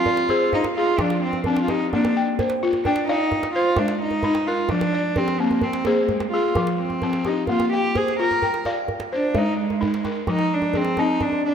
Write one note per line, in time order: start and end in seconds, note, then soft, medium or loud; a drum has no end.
0.00 0.30 C4 medium
0.00 0.53 F4 loud
0.00 0.30 G4 medium
0.06 0.76 D5 medium
0.06 djembe bass medium
0.17 djembe slap medium
0.29 0.76 G#4 medium
0.29 0.99 C5 medium
0.29 djembe slap soft
0.29 djembe tone medium
0.53 0.64 D#4 medium
0.53 djembe slap soft
0.53 djembe bass medium
0.64 djembe slap medium
0.64 djembe tone medium
0.76 1.02 F4 medium
0.76 1.46 G#4 medium
0.99 1.46 F3 medium
0.99 1.22 D4 medium
0.99 djembe tone medium
0.99 djembe bass medium
1.10 djembe slap medium
1.23 1.44 C4 medium
1.33 djembe tone medium
1.44 1.92 C4 medium
1.44 1.61 D4 medium
1.44 djembe bass medium
1.56 djembe slap medium
1.61 1.71 F4 medium
1.68 1.92 D#4 medium
1.68 2.16 G4 medium
1.68 djembe tone medium
1.93 2.39 A#3 medium
1.93 2.14 D4 medium
1.93 djembe slap soft
1.93 djembe bass medium
2.05 djembe slap medium
2.05 djembe tone soft
2.16 2.85 G5 medium
2.16 djembe slap soft
2.39 3.08 C5 medium
2.39 djembe tone medium
2.39 djembe bass medium
2.50 djembe slap medium
2.63 3.08 F4 medium
2.73 djembe tone medium
2.84 3.06 D4 medium
2.84 3.55 G5 medium
2.84 djembe bass medium
2.96 djembe slap medium
3.07 3.51 D#4 loud
3.07 3.32 D5 medium
3.07 3.55 F5 medium
3.07 djembe slap soft
3.32 djembe slap soft
3.32 djembe bass medium
3.43 djembe slap medium
3.43 djembe tone medium
3.55 3.80 F4 loud
3.55 4.24 C5 medium
3.77 4.24 G#3 medium
3.77 4.01 D4 medium
3.77 djembe tone medium
3.77 djembe bass medium
3.88 djembe slap medium
4.02 4.48 D#4 loud
4.11 djembe tone medium
4.23 4.70 D#4 medium
4.23 djembe bass medium
4.35 djembe slap medium
4.47 4.71 F4 medium
4.47 4.94 A#4 medium
4.69 5.17 F3 medium
4.69 5.18 D4 medium
4.69 djembe slap soft
4.69 djembe bass medium
4.81 djembe slap medium
4.81 djembe tone medium
4.93 5.63 D5 medium
4.93 djembe slap soft
5.16 5.42 C4 medium
5.16 5.87 G4 medium
5.16 djembe bass medium
5.28 djembe slap medium
5.40 5.65 A#3 medium
5.40 5.86 C4 medium
5.51 djembe tone medium
5.61 5.88 C4 medium
5.61 djembe bass medium
5.73 djembe slap medium
5.85 6.01 A#3 medium
5.85 6.32 G#4 medium
5.85 6.56 C5 medium
5.85 djembe tone medium
6.02 6.10 A#3 medium
6.09 6.32 G#3 medium
6.09 djembe slap soft
6.09 djembe bass medium
6.20 djembe slap medium
6.20 djembe tone medium
6.32 6.54 F4 medium
6.32 7.03 G#4 medium
6.55 7.03 F3 medium
6.55 djembe tone medium
6.55 djembe bass medium
6.67 djembe slap medium
6.79 7.29 C4 medium
6.90 djembe tone soft
7.02 7.49 C4 medium
7.02 djembe bass medium
7.13 djembe slap medium
7.24 7.49 D#4 medium
7.24 7.72 G4 medium
7.24 djembe tone medium
7.47 7.96 A#3 medium
7.47 7.71 F4 medium
7.47 djembe bass medium
7.60 djembe slap medium
7.60 djembe tone soft
7.73 7.99 G4 loud
7.73 8.42 G5 medium
7.73 djembe slap soft
7.84 djembe slap soft
7.95 8.19 G#4 medium
7.95 8.65 C5 medium
7.95 djembe slap soft
7.95 djembe tone medium
7.95 djembe bass medium
8.08 djembe slap soft
8.19 8.65 F4 medium
8.19 8.63 A#4 loud
8.19 djembe slap soft
8.31 djembe slap soft
8.31 djembe tone medium
8.42 9.12 G5 medium
8.42 djembe bass medium
8.54 djembe slap soft
8.65 8.89 D5 medium
8.65 9.12 F5 medium
8.65 djembe tone medium
8.88 djembe bass medium
9.00 djembe slap soft
9.00 djembe tone medium
9.12 9.39 D4 medium
9.12 9.82 C5 medium
9.23 djembe slap soft
9.35 9.81 G#3 medium
9.35 9.59 D#4 medium
9.35 djembe slap soft
9.35 djembe tone medium
9.35 djembe bass medium
9.59 10.25 G#3 medium
9.59 djembe slap soft
9.70 djembe tone medium
9.81 10.28 D#4 medium
9.81 djembe slap soft
9.81 djembe bass medium
9.94 djembe slap soft
10.04 10.51 A#4 medium
10.04 djembe tone medium
10.16 djembe slap soft
10.27 10.74 F3 medium
10.27 10.55 D#4 loud
10.27 djembe tone medium
10.27 djembe bass medium
10.38 djembe slap soft
10.54 10.79 D4 medium
10.62 djembe tone soft
10.74 11.01 C4 loud
10.74 11.44 G#4 medium
10.74 djembe bass medium
10.85 djembe slap soft
10.97 11.45 C4 medium
10.97 11.24 D#4 loud
10.97 djembe slap soft
10.97 djembe tone medium
11.20 11.45 D4 medium
11.20 djembe slap soft
11.20 djembe bass medium
11.32 djembe tone soft
11.45 11.54 D4 loud